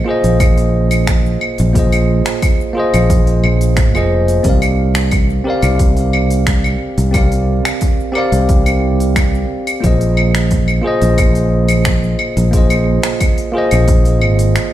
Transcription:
Already playing: A#3 F4 G#4 C5 D#5
0.04 A#3 F4 G#4
0.09 C5 D#5
0.24 A#1, open hi-hat, cabasa
0.40 kick, open hi-hat, cabasa, claves
0.58 open hi-hat, cabasa
0.91 open hi-hat, cabasa, claves
1.07 finger snap, kick, open hi-hat, cabasa
1.26 cabasa
1.41 claves
1.58 A#1, open hi-hat, cabasa
1.73 A#3 F4 G#4, kick, open hi-hat, cabasa
1.78 C5 D#5
1.92 open hi-hat, cabasa, claves
2.26 finger snap, open hi-hat, cabasa
2.42 kick, open hi-hat, cabasa, claves
2.60 cabasa
2.73 A#3 F4 G#4
2.78 C5 D#5
2.94 A#1, open hi-hat, cabasa, claves
3.10 kick, open hi-hat, cabasa
3.27 open hi-hat, cabasa
3.44 A#1, claves
3.61 open hi-hat, cabasa
3.77 finger snap, kick, open hi-hat, cabasa
3.94 F1 A#3 F4 G#4 C5 D#5, cabasa, claves
4.28 open hi-hat, cabasa
4.43 C2 C4 G4 A#4, kick, open hi-hat, cabasa
4.48 D5 F5
4.62 open hi-hat, cabasa, claves
4.95 finger snap, open hi-hat, cabasa
5.11 kick, open hi-hat, cabasa, claves
5.30 cabasa
5.44 C4 G4 A#4
5.49 D5 F5
5.62 C2, open hi-hat, cabasa, claves
5.79 kick, open hi-hat, cabasa
5.97 open hi-hat, cabasa
6.13 claves
6.30 open hi-hat, cabasa
6.47 finger snap, kick, open hi-hat, cabasa
6.64 cabasa, claves
6.98 C2, open hi-hat, cabasa
7.11 C4 G4 A#4, kick, open hi-hat, cabasa, claves
7.16 D5 F5
7.32 open hi-hat, cabasa
7.65 finger snap, open hi-hat, cabasa, claves
7.81 kick, open hi-hat, cabasa
8.00 cabasa
8.12 C4 G4 A#4, claves
8.17 D5 F5
8.32 C2, open hi-hat, cabasa
8.49 kick, open hi-hat, cabasa
8.66 open hi-hat, cabasa, claves
9.00 open hi-hat, cabasa
9.16 finger snap, kick, open hi-hat, cabasa, claves
9.34 cabasa
9.67 open hi-hat, cabasa, claves
9.80 A#1 A#3 F4 G#4, kick, open hi-hat
9.85 C5 D#5, cabasa
10.01 open hi-hat, cabasa
10.17 claves
10.35 finger snap, open hi-hat, cabasa
10.51 kick, open hi-hat, cabasa
10.68 cabasa, claves
10.82 A#3 F4 G#4
10.86 C5 D#5
11.02 A#1, open hi-hat, cabasa
11.18 kick, open hi-hat, cabasa, claves
11.35 open hi-hat, cabasa
11.69 open hi-hat, cabasa, claves
11.85 finger snap, kick, open hi-hat, cabasa
12.03 cabasa
12.19 claves
12.37 A#1, open hi-hat, cabasa
12.51 A#3 F4 G#4, kick, open hi-hat, cabasa
12.56 C5 D#5
12.70 open hi-hat, cabasa, claves
13.03 finger snap, open hi-hat, cabasa
13.20 kick, open hi-hat, cabasa, claves
13.38 open hi-hat, cabasa
13.52 A#3 F4 G#4
13.57 C5 D#5
13.71 A#1, open hi-hat, cabasa, claves
13.88 kick, open hi-hat, cabasa
14.05 open hi-hat, cabasa
14.22 G#1, claves
14.39 open hi-hat, cabasa
14.56 finger snap, open hi-hat, cabasa

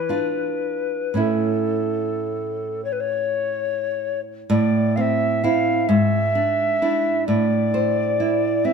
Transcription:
Already playing: B4
0.09 D4 F4
1.14 A2 C#4 E4
1.20 A4
2.85 C#5
2.92 B4
3.00 C#5
4.50 A2 D5
4.96 C4 F5
5.01 E5
5.44 C4 E4 F5
5.88 G#2 E5
6.35 D4
6.82 D4 E4
7.27 A2 D5
7.74 C5
8.20 E4
8.65 C4 E5

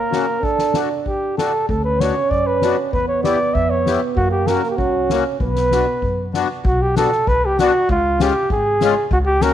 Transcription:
Already playing: A#3 A#4
0.11 C#3 A#3 C#4 F#4, snare
0.42 D4 A4, kick
0.58 snare
0.74 A3 D4 F#4, snare
1.06 G4, kick
1.38 A3 D4 F#4 A4, snare
1.69 D2 C#4 A4, kick
1.84 B4
2.00 B3 D4 F#4 C#5, snare
2.30 F#2 D5, kick
2.46 B4
2.62 B3 D4 F#4, snare
2.93 E2 B3 B4, kick
3.08 C#5
3.24 B3 E4 G4 D5, snare
3.54 F2 E5, kick
3.70 C#5
3.86 B3 E4 G4, snare
4.16 F#2 A#3 F#4, kick
4.31 G4
4.47 A#3 C#4 F#4 A#4, snare
4.63 snare
4.70 G4
4.76 C2 C#4 F#4, kick
5.10 A#3 C#4 F#4, snare
5.40 B1 B3 B4, kick
5.55 snare
5.71 B3 D4 F#4, snare
6.02 F#2, kick
6.34 B3 D4 F#4, snare
6.64 B1 F#4, kick
6.82 G4
6.96 B3 D4 F#4 A4, snare, hi-hat pedal
7.12 snare
7.27 C2 B4, kick
7.45 G4
7.59 B3 D4 F#4, snare, hi-hat pedal
7.89 C#2 F4, kick
8.20 G#3 C#4 F4 G4, snare, hi-hat pedal
8.50 G#1 G#4, kick
8.81 G#3 C#4 F4, snare, hi-hat pedal
9.11 C#2 F#4, kick
9.26 G4
9.41 A#3 C#4 F#4 A#4, snare, hi-hat pedal

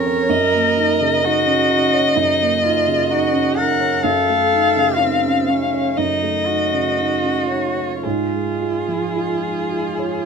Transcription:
Already playing: F2 F3 G#3 C4 C#4 A#4 C#5
0.06 C#5
0.29 F#2 D#5
0.54 A#3
0.77 D#4
1.00 C#3
1.23 D#4 F#4
1.47 C#4
1.70 D#4
1.94 C#5
2.16 F#2 D#4
2.40 A#3
2.63 D#4 F4
2.87 C#3
3.10 D#4 F#4
3.32 C#4
3.56 D#4 A#4 F#5
3.80 C#5
4.04 F#2 A4 F5
4.29 A3
4.52 D#4
4.76 C#3
5.01 C4 D#4
5.25 C#4
5.49 C#4 D#4
5.74 C#5
5.97 F#2 D#4 D#5
6.22 A3
6.46 D#4 F#4
6.73 C#3
6.98 D#4
7.24 C#4
7.49 D#4 C#5
7.78 C#5
8.03 G#2 F4 G#4
8.33 G#3
8.61 F4
8.88 F3
9.16 F4
9.43 D#4
9.71 F4
9.99 C#5

